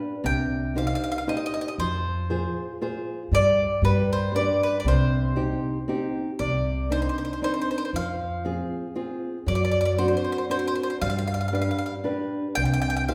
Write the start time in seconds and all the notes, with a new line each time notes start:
Already playing: D4 G4 B4
0.24 C2 C3 G5
0.75 D#4 G4 C5 F5
0.87 F5
0.95 F5
1.04 F5
1.12 F5
1.18 F5
1.27 D#4 G4 C5 D#5
1.37 D#5
1.46 D#5
1.54 D#5
1.61 D#5
1.68 D#5
1.78 F2 F3 C5
2.30 F4 G#4 C5
2.81 F4 G#4 C5
3.32 G2 G3 D5
3.82 G2 G3 B4
4.13 C5
4.34 D4 G4 B4 D5
4.63 B4
4.80 D5
4.84 C2 C3 C5
5.36 C4 D#4 G4
5.88 C4 D#4 G4
6.39 C2 C3 D5
6.90 C4 D4 D#4 C5
7.02 C5
7.09 C5
7.18 C5
7.25 C5
7.33 C5
7.42 C4 D4 D#4 C5
7.54 C5
7.62 C5
7.71 C5
7.78 C5
7.85 C5
7.93 F2 F3 F5
8.45 C4 F4 G#4
8.95 C4 F4 G#4
9.46 F#2 F#3 D5
9.55 D5
9.65 D5
9.71 D5
9.81 D5
9.85 D5
9.98 C4 D4 F#4 C5
10.08 C5
10.17 C5
10.24 C5
10.32 C5
10.38 C5
10.49 C4 D4 F#4 C5
10.59 C5
10.68 C5
10.75 C5
10.83 C5
10.90 C5
11.01 G2 G3 F5
11.10 F5
11.19 F5
11.28 F5
11.34 F5
11.41 F5
11.48 F5
11.52 D4 G4 B4 F5
11.62 F5
11.71 F5
11.78 F5
11.86 F5
12.04 D4 G4 B4
12.55 C2 C3 G5
12.65 G5
12.74 G5
12.82 G5
12.90 G5
12.97 G5
13.08 D#4 G4 C5 F5